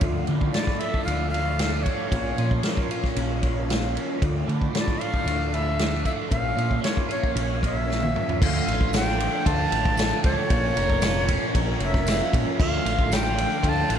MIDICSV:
0, 0, Header, 1, 6, 480
1, 0, Start_track
1, 0, Key_signature, -1, "minor"
1, 0, Tempo, 523560
1, 18, Time_signature, 4, 2, 24, 8
1, 12824, End_track
2, 0, Start_track
2, 0, Title_t, "Flute"
2, 0, Program_c, 0, 73
2, 481, Note_on_c, 0, 74, 87
2, 727, Note_on_c, 0, 76, 103
2, 741, Note_off_c, 0, 74, 0
2, 950, Note_off_c, 0, 76, 0
2, 955, Note_on_c, 0, 77, 97
2, 1187, Note_off_c, 0, 77, 0
2, 1192, Note_on_c, 0, 77, 106
2, 1676, Note_on_c, 0, 73, 86
2, 1689, Note_off_c, 0, 77, 0
2, 2651, Note_off_c, 0, 73, 0
2, 4385, Note_on_c, 0, 74, 92
2, 4592, Note_on_c, 0, 77, 115
2, 4606, Note_off_c, 0, 74, 0
2, 5076, Note_on_c, 0, 76, 107
2, 5090, Note_off_c, 0, 77, 0
2, 5550, Note_off_c, 0, 76, 0
2, 5555, Note_on_c, 0, 76, 93
2, 5610, Note_off_c, 0, 76, 0
2, 5783, Note_on_c, 0, 77, 102
2, 6234, Note_off_c, 0, 77, 0
2, 6269, Note_on_c, 0, 73, 80
2, 6494, Note_off_c, 0, 73, 0
2, 6512, Note_on_c, 0, 73, 80
2, 6736, Note_off_c, 0, 73, 0
2, 6773, Note_on_c, 0, 73, 72
2, 6987, Note_off_c, 0, 73, 0
2, 7011, Note_on_c, 0, 76, 104
2, 7685, Note_off_c, 0, 76, 0
2, 7737, Note_on_c, 0, 77, 104
2, 8172, Note_off_c, 0, 77, 0
2, 8208, Note_on_c, 0, 79, 101
2, 8676, Note_on_c, 0, 81, 112
2, 8690, Note_off_c, 0, 79, 0
2, 9385, Note_off_c, 0, 81, 0
2, 9391, Note_on_c, 0, 73, 115
2, 10622, Note_off_c, 0, 73, 0
2, 10858, Note_on_c, 0, 76, 94
2, 11321, Note_off_c, 0, 76, 0
2, 11551, Note_on_c, 0, 77, 99
2, 12044, Note_on_c, 0, 79, 110
2, 12058, Note_off_c, 0, 77, 0
2, 12549, Note_on_c, 0, 81, 108
2, 12563, Note_off_c, 0, 79, 0
2, 12811, Note_off_c, 0, 81, 0
2, 12824, End_track
3, 0, Start_track
3, 0, Title_t, "Tonewheel organ"
3, 0, Program_c, 1, 16
3, 20, Note_on_c, 1, 69, 61
3, 28, Note_on_c, 1, 53, 67
3, 28, Note_on_c, 1, 62, 57
3, 31, Note_on_c, 1, 74, 73
3, 1925, Note_off_c, 1, 69, 0
3, 1929, Note_off_c, 1, 62, 0
3, 1930, Note_off_c, 1, 74, 0
3, 1934, Note_on_c, 1, 61, 60
3, 1934, Note_on_c, 1, 70, 59
3, 1939, Note_on_c, 1, 73, 70
3, 3844, Note_off_c, 1, 61, 0
3, 3844, Note_off_c, 1, 70, 0
3, 3847, Note_off_c, 1, 73, 0
3, 3863, Note_on_c, 1, 62, 60
3, 3866, Note_on_c, 1, 69, 60
3, 3876, Note_on_c, 1, 74, 70
3, 5770, Note_off_c, 1, 62, 0
3, 5772, Note_off_c, 1, 69, 0
3, 5774, Note_on_c, 1, 73, 72
3, 5777, Note_off_c, 1, 74, 0
3, 5780, Note_on_c, 1, 61, 58
3, 5786, Note_on_c, 1, 70, 64
3, 7681, Note_off_c, 1, 53, 0
3, 7685, Note_off_c, 1, 73, 0
3, 7688, Note_off_c, 1, 61, 0
3, 7691, Note_off_c, 1, 70, 0
3, 7698, Note_on_c, 1, 53, 71
3, 7704, Note_on_c, 1, 69, 78
3, 7708, Note_on_c, 1, 62, 66
3, 7710, Note_on_c, 1, 57, 64
3, 9603, Note_off_c, 1, 53, 0
3, 9607, Note_off_c, 1, 69, 0
3, 9609, Note_off_c, 1, 62, 0
3, 9610, Note_off_c, 1, 57, 0
3, 9623, Note_on_c, 1, 53, 76
3, 9623, Note_on_c, 1, 58, 64
3, 9623, Note_on_c, 1, 61, 60
3, 9625, Note_on_c, 1, 70, 80
3, 11523, Note_off_c, 1, 58, 0
3, 11523, Note_off_c, 1, 61, 0
3, 11524, Note_off_c, 1, 70, 0
3, 11540, Note_on_c, 1, 57, 68
3, 11544, Note_on_c, 1, 69, 80
3, 11549, Note_on_c, 1, 62, 64
3, 12824, Note_off_c, 1, 53, 0
3, 12824, Note_off_c, 1, 57, 0
3, 12824, Note_off_c, 1, 62, 0
3, 12824, Note_off_c, 1, 69, 0
3, 12824, End_track
4, 0, Start_track
4, 0, Title_t, "Overdriven electric guitar"
4, 0, Program_c, 2, 29
4, 0, Note_on_c, 2, 53, 67
4, 0, Note_on_c, 2, 65, 68
4, 28, Note_on_c, 2, 38, 64
4, 270, Note_off_c, 2, 53, 0
4, 274, Note_on_c, 2, 45, 64
4, 497, Note_off_c, 2, 45, 0
4, 508, Note_on_c, 2, 45, 64
4, 748, Note_on_c, 2, 57, 62
4, 981, Note_on_c, 2, 50, 68
4, 1224, Note_off_c, 2, 45, 0
4, 1226, Note_off_c, 2, 38, 0
4, 1235, Note_on_c, 2, 45, 65
4, 1464, Note_off_c, 2, 57, 0
4, 1475, Note_on_c, 2, 57, 68
4, 1711, Note_off_c, 2, 50, 0
4, 1722, Note_on_c, 2, 50, 66
4, 1949, Note_off_c, 2, 57, 0
4, 1950, Note_off_c, 2, 45, 0
4, 1953, Note_off_c, 2, 50, 0
4, 1954, Note_on_c, 2, 46, 73
4, 2189, Note_on_c, 2, 53, 66
4, 2424, Note_on_c, 2, 58, 66
4, 2665, Note_off_c, 2, 65, 0
4, 2669, Note_on_c, 2, 65, 66
4, 2901, Note_on_c, 2, 61, 71
4, 3126, Note_off_c, 2, 58, 0
4, 3137, Note_on_c, 2, 58, 71
4, 3151, Note_off_c, 2, 46, 0
4, 3376, Note_off_c, 2, 65, 0
4, 3380, Note_on_c, 2, 65, 72
4, 3611, Note_off_c, 2, 61, 0
4, 3622, Note_on_c, 2, 61, 68
4, 3860, Note_on_c, 2, 38, 70
4, 3863, Note_off_c, 2, 58, 0
4, 3865, Note_off_c, 2, 61, 0
4, 4100, Note_off_c, 2, 53, 0
4, 4104, Note_on_c, 2, 45, 69
4, 4341, Note_off_c, 2, 45, 0
4, 4352, Note_on_c, 2, 45, 62
4, 4592, Note_on_c, 2, 57, 66
4, 4834, Note_on_c, 2, 50, 66
4, 5067, Note_off_c, 2, 38, 0
4, 5067, Note_off_c, 2, 45, 0
4, 5078, Note_on_c, 2, 45, 63
4, 5308, Note_off_c, 2, 57, 0
4, 5319, Note_on_c, 2, 57, 70
4, 5534, Note_off_c, 2, 50, 0
4, 5545, Note_on_c, 2, 50, 70
4, 5787, Note_on_c, 2, 46, 73
4, 5789, Note_off_c, 2, 50, 0
4, 5796, Note_off_c, 2, 45, 0
4, 5796, Note_off_c, 2, 57, 0
4, 6025, Note_on_c, 2, 53, 62
4, 6260, Note_on_c, 2, 58, 65
4, 6495, Note_off_c, 2, 65, 0
4, 6499, Note_on_c, 2, 65, 64
4, 6741, Note_on_c, 2, 61, 72
4, 6981, Note_off_c, 2, 58, 0
4, 6990, Note_off_c, 2, 46, 0
4, 6992, Note_on_c, 2, 58, 68
4, 7229, Note_off_c, 2, 65, 0
4, 7230, Note_off_c, 2, 53, 0
4, 7240, Note_on_c, 2, 65, 69
4, 7467, Note_off_c, 2, 61, 0
4, 7478, Note_on_c, 2, 61, 68
4, 7712, Note_off_c, 2, 58, 0
4, 7716, Note_off_c, 2, 61, 0
4, 7717, Note_off_c, 2, 65, 0
4, 7723, Note_on_c, 2, 38, 73
4, 7956, Note_on_c, 2, 65, 75
4, 8206, Note_on_c, 2, 57, 73
4, 8436, Note_on_c, 2, 50, 64
4, 8666, Note_off_c, 2, 65, 0
4, 8669, Note_on_c, 2, 65, 80
4, 8894, Note_off_c, 2, 50, 0
4, 8905, Note_on_c, 2, 50, 70
4, 8917, Note_off_c, 2, 38, 0
4, 9127, Note_off_c, 2, 57, 0
4, 9138, Note_on_c, 2, 57, 76
4, 9374, Note_off_c, 2, 50, 0
4, 9385, Note_on_c, 2, 50, 70
4, 9624, Note_off_c, 2, 57, 0
4, 9627, Note_off_c, 2, 50, 0
4, 9628, Note_on_c, 2, 46, 79
4, 9872, Note_off_c, 2, 65, 0
4, 9875, Note_on_c, 2, 70, 75
4, 10116, Note_on_c, 2, 65, 72
4, 10348, Note_on_c, 2, 61, 69
4, 10576, Note_off_c, 2, 70, 0
4, 10587, Note_on_c, 2, 70, 82
4, 10822, Note_off_c, 2, 61, 0
4, 10826, Note_off_c, 2, 46, 0
4, 10833, Note_on_c, 2, 61, 70
4, 11067, Note_off_c, 2, 65, 0
4, 11070, Note_on_c, 2, 65, 79
4, 11293, Note_off_c, 2, 61, 0
4, 11304, Note_on_c, 2, 61, 74
4, 11539, Note_on_c, 2, 38, 80
4, 11544, Note_off_c, 2, 61, 0
4, 11545, Note_off_c, 2, 70, 0
4, 11786, Note_off_c, 2, 65, 0
4, 11786, Note_on_c, 2, 65, 76
4, 12024, Note_on_c, 2, 57, 77
4, 12259, Note_on_c, 2, 50, 70
4, 12489, Note_off_c, 2, 65, 0
4, 12492, Note_on_c, 2, 65, 81
4, 12730, Note_off_c, 2, 50, 0
4, 12739, Note_off_c, 2, 38, 0
4, 12741, Note_on_c, 2, 50, 76
4, 12824, Note_off_c, 2, 50, 0
4, 12824, Note_off_c, 2, 57, 0
4, 12824, Note_off_c, 2, 65, 0
4, 12824, End_track
5, 0, Start_track
5, 0, Title_t, "Fingered electric bass"
5, 0, Program_c, 3, 33
5, 12, Note_on_c, 3, 38, 95
5, 196, Note_off_c, 3, 38, 0
5, 261, Note_on_c, 3, 50, 85
5, 442, Note_off_c, 3, 50, 0
5, 982, Note_on_c, 3, 38, 88
5, 1709, Note_off_c, 3, 38, 0
5, 1943, Note_on_c, 3, 34, 96
5, 2125, Note_off_c, 3, 34, 0
5, 2183, Note_on_c, 3, 46, 87
5, 2365, Note_off_c, 3, 46, 0
5, 2903, Note_on_c, 3, 34, 92
5, 3631, Note_off_c, 3, 34, 0
5, 3869, Note_on_c, 3, 38, 104
5, 4050, Note_off_c, 3, 38, 0
5, 4108, Note_on_c, 3, 50, 86
5, 4290, Note_off_c, 3, 50, 0
5, 4820, Note_on_c, 3, 38, 91
5, 5551, Note_off_c, 3, 38, 0
5, 5790, Note_on_c, 3, 34, 103
5, 5972, Note_off_c, 3, 34, 0
5, 6021, Note_on_c, 3, 46, 88
5, 6207, Note_off_c, 3, 46, 0
5, 6744, Note_on_c, 3, 34, 91
5, 7473, Note_off_c, 3, 34, 0
5, 7716, Note_on_c, 3, 38, 94
5, 7896, Note_off_c, 3, 38, 0
5, 7955, Note_on_c, 3, 33, 86
5, 8498, Note_off_c, 3, 33, 0
5, 8671, Note_on_c, 3, 38, 111
5, 8853, Note_off_c, 3, 38, 0
5, 8906, Note_on_c, 3, 33, 96
5, 9271, Note_off_c, 3, 33, 0
5, 9389, Note_on_c, 3, 37, 96
5, 9480, Note_off_c, 3, 37, 0
5, 9625, Note_on_c, 3, 34, 100
5, 9808, Note_off_c, 3, 34, 0
5, 9869, Note_on_c, 3, 29, 92
5, 10412, Note_off_c, 3, 29, 0
5, 10585, Note_on_c, 3, 34, 109
5, 10767, Note_off_c, 3, 34, 0
5, 10819, Note_on_c, 3, 29, 96
5, 11184, Note_off_c, 3, 29, 0
5, 11307, Note_on_c, 3, 34, 102
5, 11397, Note_off_c, 3, 34, 0
5, 11546, Note_on_c, 3, 38, 108
5, 11727, Note_off_c, 3, 38, 0
5, 11783, Note_on_c, 3, 33, 94
5, 12327, Note_off_c, 3, 33, 0
5, 12496, Note_on_c, 3, 38, 115
5, 12680, Note_off_c, 3, 38, 0
5, 12739, Note_on_c, 3, 33, 93
5, 12824, Note_off_c, 3, 33, 0
5, 12824, End_track
6, 0, Start_track
6, 0, Title_t, "Drums"
6, 9, Note_on_c, 9, 51, 74
6, 15, Note_on_c, 9, 36, 96
6, 100, Note_off_c, 9, 51, 0
6, 106, Note_off_c, 9, 36, 0
6, 248, Note_on_c, 9, 51, 51
6, 340, Note_off_c, 9, 51, 0
6, 379, Note_on_c, 9, 36, 77
6, 470, Note_off_c, 9, 36, 0
6, 496, Note_on_c, 9, 51, 78
6, 501, Note_on_c, 9, 38, 102
6, 587, Note_off_c, 9, 51, 0
6, 593, Note_off_c, 9, 38, 0
6, 615, Note_on_c, 9, 38, 31
6, 617, Note_on_c, 9, 36, 82
6, 706, Note_off_c, 9, 38, 0
6, 709, Note_off_c, 9, 36, 0
6, 737, Note_on_c, 9, 51, 65
6, 829, Note_off_c, 9, 51, 0
6, 862, Note_on_c, 9, 36, 72
6, 954, Note_off_c, 9, 36, 0
6, 987, Note_on_c, 9, 51, 74
6, 1078, Note_off_c, 9, 51, 0
6, 1230, Note_on_c, 9, 51, 58
6, 1322, Note_off_c, 9, 51, 0
6, 1459, Note_on_c, 9, 51, 84
6, 1465, Note_on_c, 9, 38, 107
6, 1551, Note_off_c, 9, 51, 0
6, 1556, Note_off_c, 9, 38, 0
6, 1704, Note_on_c, 9, 36, 69
6, 1705, Note_on_c, 9, 51, 62
6, 1795, Note_off_c, 9, 36, 0
6, 1796, Note_off_c, 9, 51, 0
6, 1942, Note_on_c, 9, 36, 96
6, 1944, Note_on_c, 9, 51, 79
6, 2034, Note_off_c, 9, 36, 0
6, 2036, Note_off_c, 9, 51, 0
6, 2182, Note_on_c, 9, 51, 59
6, 2274, Note_off_c, 9, 51, 0
6, 2302, Note_on_c, 9, 36, 74
6, 2394, Note_off_c, 9, 36, 0
6, 2413, Note_on_c, 9, 51, 84
6, 2418, Note_on_c, 9, 38, 100
6, 2505, Note_off_c, 9, 51, 0
6, 2510, Note_off_c, 9, 38, 0
6, 2542, Note_on_c, 9, 36, 80
6, 2634, Note_off_c, 9, 36, 0
6, 2666, Note_on_c, 9, 51, 67
6, 2757, Note_off_c, 9, 51, 0
6, 2785, Note_on_c, 9, 36, 74
6, 2789, Note_on_c, 9, 38, 34
6, 2876, Note_off_c, 9, 36, 0
6, 2881, Note_off_c, 9, 38, 0
6, 2901, Note_on_c, 9, 51, 80
6, 2993, Note_off_c, 9, 51, 0
6, 3143, Note_on_c, 9, 51, 59
6, 3145, Note_on_c, 9, 36, 75
6, 3234, Note_off_c, 9, 51, 0
6, 3237, Note_off_c, 9, 36, 0
6, 3394, Note_on_c, 9, 51, 79
6, 3399, Note_on_c, 9, 38, 104
6, 3485, Note_off_c, 9, 51, 0
6, 3491, Note_off_c, 9, 38, 0
6, 3638, Note_on_c, 9, 51, 61
6, 3729, Note_off_c, 9, 51, 0
6, 3869, Note_on_c, 9, 36, 102
6, 3870, Note_on_c, 9, 51, 73
6, 3961, Note_off_c, 9, 36, 0
6, 3962, Note_off_c, 9, 51, 0
6, 4118, Note_on_c, 9, 51, 50
6, 4210, Note_off_c, 9, 51, 0
6, 4231, Note_on_c, 9, 36, 73
6, 4323, Note_off_c, 9, 36, 0
6, 4352, Note_on_c, 9, 51, 79
6, 4358, Note_on_c, 9, 38, 107
6, 4444, Note_off_c, 9, 51, 0
6, 4450, Note_off_c, 9, 38, 0
6, 4471, Note_on_c, 9, 36, 78
6, 4563, Note_off_c, 9, 36, 0
6, 4595, Note_on_c, 9, 51, 60
6, 4686, Note_off_c, 9, 51, 0
6, 4709, Note_on_c, 9, 36, 75
6, 4801, Note_off_c, 9, 36, 0
6, 4836, Note_on_c, 9, 51, 75
6, 4927, Note_off_c, 9, 51, 0
6, 5077, Note_on_c, 9, 51, 57
6, 5168, Note_off_c, 9, 51, 0
6, 5311, Note_on_c, 9, 51, 84
6, 5317, Note_on_c, 9, 38, 115
6, 5403, Note_off_c, 9, 51, 0
6, 5408, Note_off_c, 9, 38, 0
6, 5550, Note_on_c, 9, 36, 74
6, 5550, Note_on_c, 9, 51, 60
6, 5641, Note_off_c, 9, 36, 0
6, 5642, Note_off_c, 9, 51, 0
6, 5790, Note_on_c, 9, 36, 96
6, 5791, Note_on_c, 9, 51, 77
6, 5881, Note_off_c, 9, 36, 0
6, 5883, Note_off_c, 9, 51, 0
6, 6036, Note_on_c, 9, 51, 57
6, 6128, Note_off_c, 9, 51, 0
6, 6150, Note_on_c, 9, 36, 72
6, 6242, Note_off_c, 9, 36, 0
6, 6271, Note_on_c, 9, 51, 88
6, 6276, Note_on_c, 9, 38, 113
6, 6363, Note_off_c, 9, 51, 0
6, 6368, Note_off_c, 9, 38, 0
6, 6392, Note_on_c, 9, 36, 82
6, 6484, Note_off_c, 9, 36, 0
6, 6515, Note_on_c, 9, 51, 66
6, 6606, Note_off_c, 9, 51, 0
6, 6633, Note_on_c, 9, 36, 77
6, 6725, Note_off_c, 9, 36, 0
6, 6752, Note_on_c, 9, 51, 89
6, 6844, Note_off_c, 9, 51, 0
6, 6994, Note_on_c, 9, 36, 76
6, 7003, Note_on_c, 9, 51, 63
6, 7086, Note_off_c, 9, 36, 0
6, 7095, Note_off_c, 9, 51, 0
6, 7249, Note_on_c, 9, 38, 55
6, 7341, Note_off_c, 9, 38, 0
6, 7358, Note_on_c, 9, 48, 60
6, 7449, Note_off_c, 9, 48, 0
6, 7480, Note_on_c, 9, 45, 80
6, 7572, Note_off_c, 9, 45, 0
6, 7601, Note_on_c, 9, 43, 89
6, 7693, Note_off_c, 9, 43, 0
6, 7717, Note_on_c, 9, 36, 114
6, 7722, Note_on_c, 9, 49, 117
6, 7809, Note_off_c, 9, 36, 0
6, 7813, Note_off_c, 9, 49, 0
6, 7962, Note_on_c, 9, 51, 64
6, 8053, Note_off_c, 9, 51, 0
6, 8075, Note_on_c, 9, 36, 82
6, 8167, Note_off_c, 9, 36, 0
6, 8188, Note_on_c, 9, 54, 96
6, 8194, Note_on_c, 9, 51, 99
6, 8200, Note_on_c, 9, 38, 118
6, 8280, Note_off_c, 9, 54, 0
6, 8286, Note_off_c, 9, 51, 0
6, 8291, Note_off_c, 9, 38, 0
6, 8323, Note_on_c, 9, 38, 35
6, 8415, Note_off_c, 9, 38, 0
6, 8438, Note_on_c, 9, 51, 79
6, 8530, Note_off_c, 9, 51, 0
6, 8674, Note_on_c, 9, 36, 86
6, 8676, Note_on_c, 9, 51, 105
6, 8766, Note_off_c, 9, 36, 0
6, 8767, Note_off_c, 9, 51, 0
6, 8912, Note_on_c, 9, 51, 75
6, 9004, Note_off_c, 9, 51, 0
6, 9035, Note_on_c, 9, 36, 87
6, 9126, Note_off_c, 9, 36, 0
6, 9143, Note_on_c, 9, 54, 108
6, 9159, Note_on_c, 9, 51, 98
6, 9164, Note_on_c, 9, 38, 124
6, 9235, Note_off_c, 9, 54, 0
6, 9250, Note_off_c, 9, 51, 0
6, 9256, Note_off_c, 9, 38, 0
6, 9386, Note_on_c, 9, 51, 77
6, 9391, Note_on_c, 9, 36, 92
6, 9478, Note_off_c, 9, 51, 0
6, 9482, Note_off_c, 9, 36, 0
6, 9627, Note_on_c, 9, 51, 109
6, 9630, Note_on_c, 9, 36, 101
6, 9719, Note_off_c, 9, 51, 0
6, 9721, Note_off_c, 9, 36, 0
6, 9872, Note_on_c, 9, 51, 76
6, 9963, Note_off_c, 9, 51, 0
6, 9989, Note_on_c, 9, 36, 81
6, 10081, Note_off_c, 9, 36, 0
6, 10100, Note_on_c, 9, 54, 99
6, 10103, Note_on_c, 9, 51, 107
6, 10108, Note_on_c, 9, 38, 121
6, 10192, Note_off_c, 9, 54, 0
6, 10194, Note_off_c, 9, 51, 0
6, 10200, Note_off_c, 9, 38, 0
6, 10237, Note_on_c, 9, 38, 38
6, 10329, Note_off_c, 9, 38, 0
6, 10345, Note_on_c, 9, 51, 91
6, 10347, Note_on_c, 9, 36, 82
6, 10437, Note_off_c, 9, 51, 0
6, 10439, Note_off_c, 9, 36, 0
6, 10586, Note_on_c, 9, 51, 111
6, 10587, Note_on_c, 9, 36, 85
6, 10678, Note_off_c, 9, 51, 0
6, 10679, Note_off_c, 9, 36, 0
6, 10821, Note_on_c, 9, 51, 76
6, 10913, Note_off_c, 9, 51, 0
6, 10948, Note_on_c, 9, 36, 87
6, 10951, Note_on_c, 9, 38, 40
6, 11040, Note_off_c, 9, 36, 0
6, 11043, Note_off_c, 9, 38, 0
6, 11062, Note_on_c, 9, 54, 105
6, 11071, Note_on_c, 9, 51, 113
6, 11077, Note_on_c, 9, 38, 111
6, 11154, Note_off_c, 9, 54, 0
6, 11163, Note_off_c, 9, 51, 0
6, 11168, Note_off_c, 9, 38, 0
6, 11308, Note_on_c, 9, 36, 91
6, 11314, Note_on_c, 9, 51, 76
6, 11400, Note_off_c, 9, 36, 0
6, 11406, Note_off_c, 9, 51, 0
6, 11548, Note_on_c, 9, 36, 112
6, 11555, Note_on_c, 9, 57, 101
6, 11640, Note_off_c, 9, 36, 0
6, 11647, Note_off_c, 9, 57, 0
6, 11792, Note_on_c, 9, 51, 75
6, 11798, Note_on_c, 9, 38, 34
6, 11884, Note_off_c, 9, 51, 0
6, 11889, Note_off_c, 9, 38, 0
6, 11906, Note_on_c, 9, 36, 85
6, 11997, Note_off_c, 9, 36, 0
6, 12025, Note_on_c, 9, 54, 100
6, 12032, Note_on_c, 9, 51, 105
6, 12037, Note_on_c, 9, 38, 115
6, 12117, Note_off_c, 9, 54, 0
6, 12124, Note_off_c, 9, 51, 0
6, 12129, Note_off_c, 9, 38, 0
6, 12270, Note_on_c, 9, 51, 82
6, 12362, Note_off_c, 9, 51, 0
6, 12501, Note_on_c, 9, 36, 89
6, 12504, Note_on_c, 9, 51, 100
6, 12592, Note_off_c, 9, 36, 0
6, 12595, Note_off_c, 9, 51, 0
6, 12742, Note_on_c, 9, 51, 79
6, 12824, Note_off_c, 9, 51, 0
6, 12824, End_track
0, 0, End_of_file